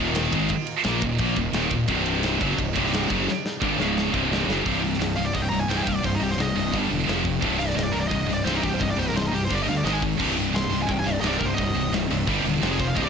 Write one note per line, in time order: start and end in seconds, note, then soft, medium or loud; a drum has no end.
0.00 0.31 D#1 medium
0.00 0.32 D#2 medium
0.00 0.32 A#2 loud
0.00 0.32 D#3 loud
0.00 1.86 D#3 medium
0.00 1.86 A#3 medium
0.00 1.86 F4 medium
0.00 1.86 D#5 medium
0.15 snare loud
0.15 ride loud
0.32 0.49 G#1 medium
0.32 0.50 G#2 medium
0.32 0.50 D#3 medium
0.32 0.50 G#3 loud
0.32 kick loud
0.32 ride medium
0.49 kick loud
0.49 ride loud
0.67 ride medium
0.84 1.01 A#1 medium
0.84 1.02 A#2 medium
0.84 1.02 F3 loud
0.84 1.02 A#3 loud
0.84 snare loud
0.84 ride loud
1.02 1.18 D#1 medium
1.02 1.16 D#2 medium
1.02 1.17 A#2 medium
1.02 kick medium
1.02 ride medium
1.18 1.35 A#1 loud
1.18 1.37 A#2 medium
1.18 1.37 F3 loud
1.18 1.37 A#3 loud
1.18 kick loud
1.18 ride medium
1.36 1.53 D#1 medium
1.36 1.51 D#2 medium
1.36 1.51 A#2 medium
1.36 kick medium
1.36 ride medium
1.53 1.70 D#1 medium
1.53 1.71 D#2 loud
1.53 1.71 A#2 loud
1.53 1.72 D#3 loud
1.53 snare loud
1.53 ride loud
1.71 1.88 D#1 medium
1.71 1.86 D#2 medium
1.71 1.86 A#2 medium
1.71 kick medium
1.71 ride medium
1.87 2.37 C1 loud
1.87 2.40 C2 loud
1.87 2.40 G2 loud
1.87 3.76 C3 medium
1.87 2.41 C3 loud
1.87 3.77 G3 medium
1.87 3.77 D4 medium
1.87 4.62 D#4 medium
1.87 kick loud
1.87 ride medium
2.06 ride medium
2.23 snare loud
2.23 ride loud
2.41 2.57 F#1 loud
2.41 2.58 F#2 medium
2.41 2.58 C#3 loud
2.41 2.58 F#3 loud
2.41 kick loud
2.41 ride medium
2.58 2.74 C1 medium
2.58 2.72 C2 medium
2.58 2.72 G2 medium
2.58 kick medium
2.58 ride loud
2.76 3.08 C1 loud
2.76 3.09 C2 medium
2.76 3.10 G2 loud
2.76 3.10 C3 loud
2.76 kick loud
2.76 ride medium
2.86 snare soft
2.93 snare loud
2.93 ride loud
3.10 3.26 F#1 medium
3.10 3.26 F#2 medium
3.10 3.27 C#3 loud
3.10 3.27 F#3 loud
3.10 kick loud
3.10 ride medium
3.28 snare medium
3.46 snare medium
3.62 3.78 G1 loud
3.62 3.79 G2 medium
3.62 3.79 D3 medium
3.62 3.79 G3 loud
3.62 kick loud
3.79 4.11 C#1 medium
3.79 4.12 C#2 medium
3.79 4.13 G#2 loud
3.79 4.13 C#3 medium
3.79 4.14 C#3 loud
3.79 4.14 G#3 medium
3.79 4.13 C#5 medium
3.79 snare medium
3.98 snare medium
4.13 4.46 C1 medium
4.13 4.47 C2 loud
4.13 4.48 G2 medium
4.13 4.64 C3 medium
4.13 4.48 C3 loud
4.13 4.64 G3 medium
4.13 4.64 D4 medium
4.13 kick loud
4.33 snare loud
4.48 4.64 F#1 medium
4.48 4.66 F#2 medium
4.48 4.66 C#3 medium
4.48 4.66 F#3 medium
4.48 snare medium
4.66 4.95 C1 medium
4.66 4.82 C2 medium
4.66 4.83 G2 medium
4.66 4.83 C3 medium
4.66 kick loud
4.66 open hi-hat medium
4.84 4.99 C2 medium
4.84 4.99 G2 medium
4.84 open hi-hat medium
4.94 snare soft
5.00 5.15 C1 medium
5.00 5.16 C2 medium
5.00 5.16 G2 medium
5.00 snare medium
5.00 open hi-hat medium
5.15 5.33 C1 medium
5.15 5.33 C2 medium
5.15 5.33 G2 medium
5.15 5.67 C3 medium
5.15 5.25 F5 medium
5.15 open hi-hat medium
5.25 5.34 D5 medium
5.34 5.50 C1 medium
5.34 5.50 C2 medium
5.34 5.51 G2 medium
5.34 5.42 D#5 medium
5.34 kick medium
5.34 open hi-hat medium
5.42 5.49 G5 medium
5.50 5.67 C1 medium
5.50 5.68 C2 medium
5.50 5.68 G2 medium
5.50 5.59 A#5 loud
5.50 open hi-hat medium
5.60 5.69 G#5 medium
5.69 5.84 C1 medium
5.69 5.85 C2 medium
5.69 5.85 G2 medium
5.69 5.86 C3 loud
5.69 5.75 G5 medium
5.69 snare loud
5.69 open hi-hat medium
5.78 5.83 G#5 medium
5.83 6.02 C1 medium
5.83 6.01 C2 medium
5.83 6.01 G2 medium
5.83 5.88 G5 medium
5.83 kick medium
5.87 5.95 F5 medium
5.87 open hi-hat medium
5.95 6.03 D5 medium
6.02 6.19 C1 medium
6.02 6.19 C2 medium
6.02 6.19 G2 medium
6.02 6.13 C5 medium
6.02 kick loud
6.02 open hi-hat medium
6.07 6.53 C3 loud
6.15 6.22 D#4 soft
6.20 6.36 C1 medium
6.20 6.36 C2 medium
6.20 6.36 G2 medium
6.20 6.30 G4 medium
6.20 open hi-hat medium
6.31 6.41 C5 medium
6.31 snare soft
6.38 6.54 C1 medium
6.38 6.54 C2 medium
6.38 6.54 G2 medium
6.38 6.74 D#5 medium
6.38 snare loud
6.38 open hi-hat medium
6.54 6.74 C1 medium
6.54 6.71 C2 medium
6.54 6.71 G2 medium
6.54 6.71 C3 medium
6.54 open hi-hat medium
6.73 6.88 G1 medium
6.73 6.89 G2 medium
6.73 6.90 D3 medium
6.73 6.90 G3 loud
6.73 kick medium
6.73 open hi-hat medium
6.90 7.05 E1 medium
6.90 7.06 G2 medium
6.90 7.06 D3 medium
6.90 open hi-hat medium
7.06 7.38 F1 medium
7.06 7.23 F2 medium
7.06 7.23 C3 medium
7.06 7.24 F3 loud
7.06 snare loud
7.06 open hi-hat medium
7.24 7.40 F2 medium
7.24 7.40 C3 medium
7.24 kick medium
7.24 open hi-hat medium
7.42 7.72 C1 medium
7.42 7.57 C2 loud
7.42 7.58 G2 medium
7.42 7.59 C3 loud
7.42 kick loud
7.42 open hi-hat medium
7.59 7.75 C2 medium
7.59 7.75 G2 medium
7.59 7.68 F5 loud
7.59 open hi-hat medium
7.68 7.77 D5 medium
7.68 snare soft
7.76 7.92 C1 medium
7.76 7.92 C2 medium
7.76 7.92 G2 medium
7.76 7.83 D#5 loud
7.76 snare loud
7.76 open hi-hat medium
7.84 7.93 D5 medium
7.92 8.09 C1 medium
7.92 8.10 C2 medium
7.92 8.10 G2 medium
7.92 8.44 C3 medium
7.92 8.01 A#4 medium
7.92 open hi-hat medium
8.00 8.07 D5 loud
8.08 8.26 C1 medium
8.08 8.27 C2 medium
8.08 8.34 D#5 medium
8.08 kick medium
8.08 open hi-hat medium
8.12 8.27 G2 medium
8.29 8.44 C1 medium
8.29 8.45 C2 medium
8.29 8.44 G2 medium
8.29 open hi-hat medium
8.34 8.44 D5 medium
8.44 8.61 C1 medium
8.44 8.62 C2 loud
8.44 8.62 G2 loud
8.44 8.63 C3 loud
8.44 8.53 C5 medium
8.44 snare loud
8.44 open hi-hat medium
8.55 8.63 D#4 medium
8.63 8.78 C1 medium
8.63 8.79 C2 medium
8.63 8.79 G2 medium
8.63 8.72 G4 medium
8.63 kick medium
8.63 open hi-hat medium
8.74 8.81 C5 medium
8.81 8.96 C1 medium
8.81 8.96 C2 medium
8.81 8.97 G2 medium
8.81 9.30 C3 medium
8.81 8.90 D#5 medium
8.81 kick loud
8.81 open hi-hat medium
8.91 8.98 D5 medium
8.97 9.12 C1 medium
8.97 9.14 C2 medium
8.97 9.14 G2 medium
8.97 9.09 C5 medium
8.97 open hi-hat medium
9.09 9.16 A#4 medium
9.09 snare soft
9.15 9.30 C1 medium
9.15 9.30 C2 medium
9.15 9.31 G2 medium
9.15 9.24 C5 medium
9.15 snare loud
9.15 open hi-hat medium
9.27 9.34 D#4 medium
9.31 9.47 C1 medium
9.31 9.48 C2 medium
9.31 9.48 G2 medium
9.31 9.48 C3 medium
9.31 9.42 G4 loud
9.31 open hi-hat medium
9.45 9.55 C5 medium
9.49 9.65 G1 medium
9.49 9.66 G2 medium
9.49 9.66 D3 medium
9.49 9.66 G3 loud
9.49 kick medium
9.49 open hi-hat medium
9.55 9.62 D5 medium
9.62 9.69 D#5 medium
9.67 9.82 D2 medium
9.67 9.83 G2 medium
9.67 9.83 D3 medium
9.67 9.77 F5 loud
9.67 open hi-hat medium
9.78 9.85 D5 medium
9.84 10.14 G#1 medium
9.84 10.00 G#2 medium
9.84 10.01 D#3 loud
9.84 10.01 G#3 loud
9.84 9.93 D#5 medium
9.84 snare loud
9.84 open hi-hat medium
9.93 9.98 G#5 medium
10.02 10.17 G#2 medium
10.02 10.18 D#3 medium
10.02 kick medium
10.02 open hi-hat medium
10.19 10.49 C1 medium
10.19 10.36 C2 medium
10.19 10.36 G2 medium
10.19 12.25 C3 medium
10.19 10.36 C3 loud
10.19 12.59 G3 medium
10.19 12.59 C4 medium
10.19 12.25 D#4 medium
10.19 kick loud
10.19 crash loud
10.38 10.53 C2 medium
10.38 10.53 G2 medium
10.38 open hi-hat medium
10.54 10.69 C1 medium
10.54 10.70 C2 medium
10.54 10.70 G2 medium
10.54 10.79 C6 medium
10.54 snare loud
10.54 open hi-hat medium
10.69 10.86 C1 medium
10.69 10.88 C2 medium
10.69 11.21 C3 medium
10.69 open hi-hat medium
10.73 10.88 G2 medium
10.82 10.92 G#5 medium
10.89 11.04 C1 loud
10.89 11.05 C2 medium
10.89 11.05 G2 medium
10.89 10.99 G5 medium
10.89 kick medium
10.89 open hi-hat medium
10.99 11.07 G#5 loud
11.05 11.20 C1 medium
11.05 11.22 C2 medium
11.05 11.22 G2 medium
11.05 11.13 F5 medium
11.05 open hi-hat medium
11.13 11.20 D5 medium
11.21 11.38 C1 medium
11.21 11.40 C2 loud
11.21 11.40 G2 loud
11.21 11.40 C3 loud
11.21 11.28 D#5 loud
11.21 snare loud
11.21 open hi-hat medium
11.28 11.38 D5 medium
11.38 11.56 C1 medium
11.38 11.56 C2 medium
11.38 11.47 A#4 medium
11.38 kick medium
11.38 open hi-hat medium
11.42 11.57 G2 medium
11.42 11.54 C5 medium
11.54 11.91 D#5 medium
11.58 11.73 C1 medium
11.58 11.74 C2 medium
11.58 11.74 G2 medium
11.58 12.07 C3 loud
11.58 kick loud
11.58 open hi-hat medium
11.75 11.90 C1 medium
11.75 11.91 C2 medium
11.75 11.91 G2 medium
11.75 open hi-hat medium
11.93 12.07 C1 loud
11.93 12.08 C2 medium
11.93 12.08 G2 medium
11.93 snare loud
11.93 open hi-hat medium
12.08 12.25 C1 medium
12.08 12.26 C2 medium
12.08 12.26 G2 medium
12.08 12.25 C3 medium
12.08 open hi-hat medium
12.27 12.42 G1 medium
12.27 12.43 G2 medium
12.27 12.44 D3 medium
12.27 12.44 G3 loud
12.27 12.95 G4 medium
12.27 12.62 G5 medium
12.27 kick medium
12.27 open hi-hat medium
12.44 12.59 D#1 medium
12.44 12.60 G2 medium
12.44 12.61 D3 medium
12.44 open hi-hat medium
12.62 12.92 F1 medium
12.62 12.78 F2 loud
12.62 12.79 C3 loud
12.62 12.96 F3 medium
12.62 12.79 F3 loud
12.62 13.09 C4 medium
12.62 12.96 F5 medium
12.62 snare loud
12.62 open hi-hat medium
12.72 12.80 G#4 medium
12.79 12.95 F2 medium
12.79 12.95 C3 medium
12.79 12.88 C5 loud
12.79 kick medium
12.79 open hi-hat medium
12.88 12.96 F5 loud
12.94 13.09 C1 medium
12.94 13.09 C2 medium
12.94 13.09 G2 medium
12.94 13.09 C3 loud
12.94 13.09 G4 medium
12.94 13.09 C5 medium
12.94 13.04 D#5 medium
12.94 13.09 D#5 medium
12.94 kick loud
12.94 open hi-hat medium
13.05 13.09 D5 medium